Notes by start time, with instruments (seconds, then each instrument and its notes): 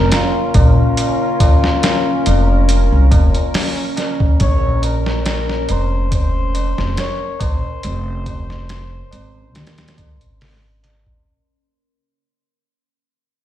Already playing: ambient pad C#4 A#4, muted trumpet A#4
0.12 muted trumpet F4, snare, closed hi-hat, tabla na
0.54 upright bass A#1, muted trumpet F4, kick, closed hi-hat, tabla na
0.78 tabla na
0.97 closed hi-hat, tabla na
1.21 tabla na
1.40 kick, closed hi-hat, tabla na
1.64 snare, tabla na
1.83 snare, closed hi-hat, tabla na
2.07 tabla na
2.26 upright bass F1, closed hi-hat, tabla na
2.50 tabla na, tabla ge
2.69 closed hi-hat, tabla na
2.92 upright bass C2, tabla na
3.11 upright bass F1, kick, closed hi-hat, tabla na
3.34 closed hi-hat, tabla na
3.54 snare, open hi-hat, tabla na
3.78 tabla na
3.97 snare, closed hi-hat, tabla na
4.19 kick, tabla na
4.40 upright bass A#1, muted trumpet C#5, kick, closed hi-hat, tabla na
4.63 tabla na
4.82 muted trumpet A#4, closed hi-hat, tabla na
5.06 snare, tabla na
5.25 muted trumpet A#4, snare, closed hi-hat, tabla na
5.48 snare, tabla na
5.69 upright bass F1, muted trumpet C5, closed hi-hat, tabla na
5.91 tabla na
6.11 muted trumpet C5, kick, closed hi-hat, tabla na
6.35 tabla na
6.54 closed hi-hat, tabla na, tabla ge
6.78 upright bass F1, snare, tabla na
6.97 muted trumpet C#5, snare, closed hi-hat, tabla na
7.21 tabla na
7.40 upright bass A#1, muted trumpet C5, kick, closed hi-hat, tabla na
7.63 tabla na
7.83 upright bass F1, closed hi-hat, tabla na
8.06 tabla na
8.26 kick, closed hi-hat, tabla na
8.49 snare, tabla na
8.69 snare, closed hi-hat, tabla na
8.90 tabla na
9.11 upright bass G#1, closed hi-hat, tabla na
9.34 tabla na, tabla ge
9.55 upright bass D#2, snare, closed hi-hat, tabla na
9.67 snare, closed hi-hat
9.78 snare, closed hi-hat, tabla na
9.88 snare, closed hi-hat
9.97 kick, closed hi-hat, tabla na
10.21 upright bass G#1, closed hi-hat, tabla na
10.41 snare, open hi-hat, tabla na
10.65 tabla na
10.83 snare, closed hi-hat, tabla na
11.07 kick, tabla na